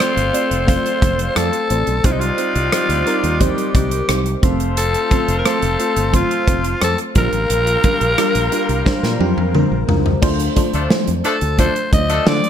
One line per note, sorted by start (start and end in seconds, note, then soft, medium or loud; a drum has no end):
0.00 0.33 A3 medium
0.00 0.33 C4 medium
0.00 1.66 C4 medium
0.00 0.33 F4 medium
0.00 1.66 F4 medium
0.00 1.66 A4 medium
0.00 0.68 C5 loud
0.00 0.64 C5 loud
0.00 0.34 D5 medium
0.00 1.66 F5 medium
0.00 cross-stick loud
0.00 closed hi-hat medium
0.17 0.30 G1 medium
0.17 closed hi-hat medium
0.33 0.59 A3 medium
0.33 0.59 C4 medium
0.33 0.59 F4 medium
0.33 0.60 D5 medium
0.33 closed hi-hat medium
0.51 0.77 F1 medium
0.51 closed hi-hat medium
0.66 0.93 A3 medium
0.66 0.93 C4 medium
0.66 0.94 F4 medium
0.66 0.94 C5 loud
0.66 1.38 C5 loud
0.66 kick medium
0.66 closed hi-hat medium
0.86 closed hi-hat soft
1.01 1.28 F1 medium
1.01 1.27 A3 medium
1.01 1.28 C4 medium
1.01 1.28 F4 medium
1.01 1.28 C5 medium
1.01 kick medium
1.01 closed hi-hat medium
1.19 closed hi-hat medium
1.35 1.49 F2 loud
1.35 1.62 A3 medium
1.35 1.62 C4 medium
1.35 1.62 F4 medium
1.35 2.07 A4 medium
1.35 1.62 C5 medium
1.35 cross-stick loud
1.35 closed hi-hat medium
1.53 closed hi-hat soft
1.70 1.83 A1 medium
1.70 1.96 A3 medium
1.70 1.96 C4 medium
1.70 1.96 F4 medium
1.70 1.97 C5 medium
1.70 closed hi-hat medium
1.87 2.00 B1 medium
1.87 closed hi-hat soft
2.04 2.30 C2 medium
2.04 2.30 G3 medium
2.04 4.05 G3 medium
2.04 2.30 C4 medium
2.04 4.05 D4 medium
2.04 4.05 D#4 medium
2.04 2.30 D#4 medium
2.04 2.13 F4 medium
2.04 2.31 C5 loud
2.04 4.05 D5 medium
2.04 kick loud
2.04 closed hi-hat loud
2.12 2.21 D#4 medium
2.20 3.42 F4 medium
2.20 closed hi-hat medium
2.38 2.64 G3 medium
2.38 2.65 C4 medium
2.38 2.65 D#4 medium
2.38 2.65 C5 medium
2.38 closed hi-hat medium
2.56 2.68 C2 medium
2.56 closed hi-hat soft
2.72 2.98 G3 medium
2.72 2.98 C4 medium
2.72 2.98 D#4 medium
2.72 2.99 C5 medium
2.72 cross-stick loud
2.72 closed hi-hat medium
2.89 3.02 D2 medium
2.89 closed hi-hat medium
3.06 3.32 G3 medium
3.06 3.32 C4 medium
3.06 3.33 D#4 medium
3.06 3.33 A#4 medium
3.06 closed hi-hat medium
3.24 3.49 D#2 medium
3.24 closed hi-hat medium
3.40 3.66 G3 medium
3.40 3.66 C4 medium
3.40 3.67 D#4 medium
3.40 3.75 G4 medium
3.40 3.67 C5 loud
3.40 kick medium
3.40 closed hi-hat medium
3.58 closed hi-hat soft
3.74 4.00 C2 medium
3.74 4.00 G3 medium
3.74 4.01 C4 medium
3.74 4.01 D#4 medium
3.74 4.39 G4 medium
3.74 4.01 C5 medium
3.74 kick medium
3.74 closed hi-hat medium
3.91 closed hi-hat medium
4.08 4.34 C2 medium
4.08 4.34 G3 medium
4.08 4.35 C4 medium
4.08 4.35 D#4 medium
4.08 4.35 C5 medium
4.08 cross-stick loud
4.08 closed hi-hat medium
4.26 closed hi-hat soft
4.42 4.94 F1 medium
4.42 4.97 A3 medium
4.42 6.78 A3 medium
4.42 4.97 C4 medium
4.42 6.77 C4 medium
4.42 6.78 F4 medium
4.42 4.98 F4 medium
4.42 6.77 C5 medium
4.42 4.98 C5 medium
4.42 kick loud
4.42 closed hi-hat medium
4.60 closed hi-hat soft
4.77 5.35 A4 loud
4.77 closed hi-hat loud
4.94 closed hi-hat medium
5.10 5.37 A3 medium
5.10 5.37 C4 medium
5.10 5.37 F4 medium
5.10 5.37 C5 medium
5.10 kick medium
5.10 closed hi-hat medium
5.28 5.41 F1 medium
5.28 closed hi-hat medium
5.39 5.47 A#4 medium
5.45 5.71 A3 medium
5.45 5.71 C4 medium
5.45 5.71 F4 medium
5.45 6.14 A4 medium
5.45 5.71 C5 medium
5.45 cross-stick loud
5.45 closed hi-hat medium
5.62 5.75 F1 medium
5.62 closed hi-hat medium
5.79 6.05 A3 medium
5.79 6.05 C4 medium
5.79 6.06 F4 medium
5.79 6.06 C5 medium
5.79 closed hi-hat medium
5.96 6.22 G1 medium
5.96 closed hi-hat medium
6.13 6.39 A3 medium
6.13 6.39 C4 medium
6.13 6.39 F4 medium
6.13 6.79 F4 medium
6.13 6.40 C5 medium
6.13 kick medium
6.13 closed hi-hat medium
6.31 closed hi-hat soft
6.47 6.73 F1 medium
6.47 6.73 A3 medium
6.47 6.73 C4 medium
6.47 6.74 F4 medium
6.47 6.74 C5 medium
6.47 kick medium
6.47 closed hi-hat medium
6.64 closed hi-hat medium
6.81 6.94 F2 loud
6.81 7.07 A3 medium
6.81 7.07 C4 medium
6.81 7.08 F4 medium
6.81 6.99 A4 medium
6.81 7.08 C5 medium
6.81 cross-stick loud
6.81 closed hi-hat medium
6.98 closed hi-hat soft
7.15 7.29 A#1 loud
7.15 7.70 G3 medium
7.15 9.85 G3 medium
7.15 9.85 A#3 medium
7.15 7.70 D4 medium
7.15 7.70 F4 medium
7.15 9.85 F4 medium
7.15 9.85 A#4 medium
7.15 7.71 A#4 medium
7.15 9.85 A#4 loud
7.15 kick loud
7.15 closed hi-hat medium
7.33 7.46 A1 medium
7.33 closed hi-hat soft
7.50 7.76 A#1 medium
7.50 closed hi-hat loud
7.67 closed hi-hat medium
7.84 8.10 G3 medium
7.84 8.10 D4 medium
7.84 8.10 F4 medium
7.84 8.10 A#4 medium
7.84 kick medium
7.84 closed hi-hat medium
8.01 8.14 A#1 medium
8.01 closed hi-hat soft
8.18 8.44 G3 medium
8.18 8.44 D4 medium
8.18 8.44 F4 medium
8.18 8.44 A#4 medium
8.18 cross-stick loud
8.18 closed hi-hat medium
8.35 8.48 A#1 medium
8.35 closed hi-hat medium
8.52 8.78 G3 medium
8.52 8.78 D4 medium
8.52 8.78 F4 medium
8.52 8.78 A#4 medium
8.52 closed hi-hat medium
8.69 8.82 C2 medium
8.69 closed hi-hat soft
8.85 9.12 G3 loud
8.85 9.12 D4 medium
8.85 9.12 F4 medium
8.85 9.12 C5 loud
8.85 kick medium
8.85 snare medium
9.03 9.16 A#2 medium
9.03 snare soft
9.19 9.33 F2 medium
9.19 9.46 G3 medium
9.19 9.46 D4 medium
9.19 9.46 F4 medium
9.19 9.46 G4 medium
9.19 high tom medium
9.37 9.63 F2 medium
9.37 high tom medium
9.54 9.80 G3 medium
9.54 9.80 D4 medium
9.54 9.81 F4 medium
9.54 9.81 A#4 medium
9.54 mid tom medium
9.71 9.84 A#1 medium
9.87 10.14 C#2 medium
9.87 10.14 G3 medium
9.87 10.14 D4 medium
9.87 10.14 F4 medium
9.87 10.15 A#4 medium
9.87 floor tom medium
10.06 floor tom medium
10.22 10.48 D2 loud
10.22 10.48 A3 loud
10.22 10.48 D4 loud
10.22 10.48 F4 loud
10.22 10.49 C5 loud
10.22 kick loud
10.22 crash loud
10.40 closed hi-hat medium
10.56 10.82 A3 loud
10.56 10.82 D4 loud
10.56 10.83 F4 medium
10.56 10.83 C5 loud
10.56 kick medium
10.56 closed hi-hat medium
10.73 10.87 D2 medium
10.73 10.88 F3 medium
10.73 10.88 A3 medium
10.73 10.88 D4 medium
10.73 10.88 A4 medium
10.73 closed hi-hat soft
10.90 11.16 A3 medium
10.90 11.16 D4 medium
10.90 11.17 F4 medium
10.90 11.17 C5 medium
10.90 snare loud
11.08 11.21 F2 medium
11.08 closed hi-hat medium
11.24 11.35 F3 medium
11.24 11.50 A3 medium
11.24 11.35 A3 loud
11.24 11.35 D4 medium
11.24 11.51 D4 medium
11.24 11.51 F4 medium
11.24 11.35 A4 loud
11.24 11.57 A4 medium
11.24 11.51 C5 medium
11.24 closed hi-hat medium
11.41 11.67 D2 medium
11.41 closed hi-hat medium
11.58 11.73 F3 medium
11.58 11.84 A3 medium
11.58 11.73 A3 medium
11.58 11.84 D4 medium
11.58 11.73 D4 medium
11.58 11.85 F4 medium
11.58 11.73 A4 medium
11.58 11.85 C5 medium
11.58 11.91 C5 loud
11.58 kick medium
11.58 closed hi-hat medium
11.76 closed hi-hat soft
11.92 12.18 D2 medium
11.92 12.18 A3 medium
11.92 12.19 D4 medium
11.92 12.19 F4 medium
11.92 12.19 D5 medium
11.92 12.29 D#5 medium
11.92 kick medium
11.92 closed hi-hat medium
12.09 12.31 F3 medium
12.09 12.31 A3 medium
12.09 12.31 D4 medium
12.09 12.31 A4 loud
12.09 closed hi-hat medium
12.26 12.40 D3 loud
12.26 12.50 A3 medium
12.26 12.50 D4 medium
12.26 12.50 F4 medium
12.26 12.50 C5 loud
12.26 12.50 D5 loud
12.26 snare loud
12.44 closed hi-hat soft